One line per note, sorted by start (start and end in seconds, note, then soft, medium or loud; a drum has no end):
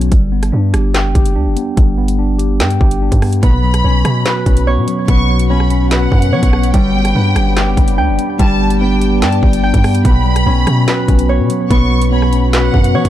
0.00 0.11 B1 loud
0.00 0.14 B2 medium
0.00 0.14 F#3 medium
0.00 0.14 B3 medium
0.00 0.14 C#4 medium
0.00 0.12 F#4 loud
0.00 closed hi-hat medium
0.12 0.52 G1 loud
0.12 1.15 G3 medium
0.12 kick loud
0.12 closed hi-hat medium
0.32 1.36 B3 medium
0.43 cross-stick medium
0.43 closed hi-hat medium
0.52 0.73 G2 loud
0.52 1.35 D4 medium
0.73 1.06 G1 loud
0.73 1.14 G4 medium
0.73 cross-stick loud
0.73 closed hi-hat medium
0.94 1.98 G5 loud
0.94 snare loud
0.94 clap loud
0.94 closed hi-hat medium
1.05 1.14 F#1 loud
1.15 1.37 F#1 loud
1.15 2.19 G4 medium
1.15 kick medium
1.15 closed hi-hat medium
1.26 closed hi-hat medium
1.36 1.48 D2 medium
1.36 2.18 D4 medium
1.46 1.56 F#1 loud
1.57 1.97 B3 medium
1.57 closed hi-hat medium
1.77 2.62 G1 loud
1.77 2.80 G3 medium
1.77 kick loud
1.77 closed hi-hat medium
1.98 3.01 B3 medium
2.08 closed hi-hat medium
2.19 3.01 D4 medium
2.38 2.80 G4 medium
2.38 closed hi-hat medium
2.60 2.80 G2 loud
2.60 3.43 G5 loud
2.60 snare loud
2.60 clap loud
2.60 closed hi-hat medium
2.71 closed hi-hat medium
2.81 3.11 G1 loud
2.81 3.43 G4 medium
2.81 kick medium
2.91 closed hi-hat medium
3.02 3.43 D4 medium
3.12 3.42 G2 loud
3.12 kick medium
3.12 closed hi-hat medium
3.22 3.43 B3 medium
3.22 cross-stick medium
3.22 open hi-hat medium
3.33 closed hi-hat medium
3.43 3.83 B1 loud
3.43 4.46 B2 medium
3.43 13.09 B3 medium
3.43 5.08 B3 medium
3.43 6.71 F#4 medium
3.43 6.71 C#5 medium
3.43 4.63 B5 loud
3.43 13.09 B5 medium
3.43 kick loud
3.43 closed hi-hat medium
3.63 4.67 F#3 medium
3.74 cross-stick medium
3.74 closed hi-hat medium
3.84 4.04 B1 loud
3.84 4.66 B3 medium
3.84 5.50 C#4 medium
4.05 4.25 B2 loud
4.05 4.45 C#4 medium
4.05 cross-stick loud
4.05 closed hi-hat medium
4.26 5.29 F#4 loud
4.26 5.91 B4 medium
4.26 snare loud
4.26 clap loud
4.26 closed hi-hat medium
4.46 4.79 B1 loud
4.46 5.50 C#4 medium
4.46 kick medium
4.46 closed hi-hat medium
4.57 closed hi-hat medium
4.67 5.49 B3 medium
4.67 6.32 C#5 loud
4.77 4.87 B2 loud
4.88 5.28 F#3 medium
4.88 closed hi-hat medium
5.08 6.08 B1 loud
5.08 6.12 B2 medium
5.08 7.15 B3 medium
5.08 5.47 C#6 loud
5.08 kick loud
5.08 closed hi-hat medium
5.29 6.33 F#3 medium
5.39 closed hi-hat medium
5.50 6.31 B3 medium
5.50 8.40 C#4 medium
5.50 5.89 B5 medium
5.60 cross-stick medium
5.70 6.10 C#4 medium
5.70 closed hi-hat medium
5.91 6.74 F#4 loud
5.91 7.96 B4 medium
5.91 6.70 F#5 loud
5.91 snare loud
5.91 clap loud
5.91 closed hi-hat medium
6.11 6.34 F#2 loud
6.11 6.74 C#4 medium
6.11 kick medium
6.22 closed hi-hat medium
6.32 6.42 F#3 loud
6.32 6.74 B3 medium
6.32 8.24 C#5 loud
6.43 6.73 B1 loud
6.43 kick medium
6.43 closed hi-hat medium
6.53 6.74 F#3 medium
6.53 cross-stick medium
6.63 closed hi-hat medium
6.74 7.14 G1 loud
6.74 8.38 G3 medium
6.74 7.77 G3 medium
6.74 10.02 G4 medium
6.74 10.02 D5 medium
6.74 7.94 G5 loud
6.74 kick loud
6.74 closed hi-hat medium
6.94 7.98 B3 medium
7.05 cross-stick medium
7.05 closed hi-hat medium
7.15 7.35 G2 loud
7.15 8.81 B3 medium
7.15 7.97 D4 medium
7.36 7.69 G1 loud
7.36 7.76 G4 medium
7.36 cross-stick loud
7.36 closed hi-hat medium
7.56 9.22 G4 medium
7.56 8.60 G5 loud
7.56 snare loud
7.56 clap loud
7.56 closed hi-hat medium
7.67 7.77 F#1 loud
7.77 8.00 F#1 loud
7.77 8.81 G4 medium
7.77 kick medium
7.77 closed hi-hat medium
7.88 closed hi-hat medium
7.98 8.10 D2 loud
7.98 8.80 D4 medium
7.98 9.62 G5 loud
8.08 8.18 F#1 loud
8.19 8.58 B3 medium
8.19 closed hi-hat medium
8.39 9.24 G1 loud
8.39 9.42 G3 medium
8.39 10.10 G3 medium
8.39 8.78 A5 loud
8.39 kick loud
8.39 closed hi-hat medium
8.60 9.63 B3 medium
8.70 closed hi-hat medium
8.81 10.05 B3 medium
8.81 9.63 D4 medium
8.81 9.20 G5 medium
9.00 9.42 G4 medium
9.00 closed hi-hat medium
9.22 9.42 G2 loud
9.22 11.58 G4 medium
9.22 10.05 G5 loud
9.22 9.42 A5 medium
9.22 snare loud
9.22 clap loud
9.22 closed hi-hat medium
9.32 closed hi-hat medium
9.43 9.73 G1 loud
9.43 10.05 G4 medium
9.43 10.01 G5 medium
9.43 kick medium
9.53 closed hi-hat medium
9.63 10.05 D4 medium
9.63 11.19 G5 loud
9.74 10.04 G2 loud
9.74 kick medium
9.74 closed hi-hat medium
9.84 10.05 B3 medium
9.84 cross-stick medium
9.84 open hi-hat medium
9.95 closed hi-hat medium
10.05 10.45 B1 loud
10.05 11.08 B2 loud
10.05 11.70 B3 medium
10.05 13.09 F#4 medium
10.05 13.09 C#5 medium
10.05 11.25 B5 loud
10.05 kick loud
10.05 closed hi-hat medium
10.25 11.29 F#3 medium
10.36 cross-stick medium
10.36 closed hi-hat medium
10.46 10.66 B1 loud
10.46 11.28 B3 medium
10.46 12.12 C#4 medium
10.67 10.87 B2 loud
10.67 11.07 C#4 medium
10.67 cross-stick loud
10.67 closed hi-hat medium
10.88 11.91 F#4 loud
10.88 12.53 B4 medium
10.88 snare loud
10.88 clap loud
10.88 closed hi-hat medium
11.08 11.41 B1 loud
11.08 12.12 C#4 medium
11.08 kick medium
11.08 closed hi-hat medium
11.19 closed hi-hat medium
11.29 12.11 B3 medium
11.29 12.94 C#5 loud
11.39 11.49 B2 loud
11.50 11.90 F#3 medium
11.50 closed hi-hat medium
11.70 12.70 B1 loud
11.70 12.74 B2 medium
11.70 13.09 B3 medium
11.70 12.09 C#6 loud
11.70 kick loud
11.70 closed hi-hat medium
11.91 12.95 F#3 medium
12.02 closed hi-hat medium
12.12 12.93 B3 medium
12.12 13.09 C#4 medium
12.12 12.51 B5 medium
12.22 cross-stick medium
12.33 12.72 C#4 medium
12.33 closed hi-hat medium
12.53 13.09 F#4 loud
12.53 13.09 B4 medium
12.53 13.09 F#5 loud
12.53 snare loud
12.53 clap loud
12.53 closed hi-hat medium
12.73 12.96 F#2 loud
12.73 13.09 C#4 medium
12.73 kick medium
12.84 closed hi-hat medium
12.95 13.04 F#3 loud
12.95 13.09 B3 medium
12.95 13.09 C#5 loud
13.05 13.09 B1 loud
13.05 kick medium
13.05 closed hi-hat medium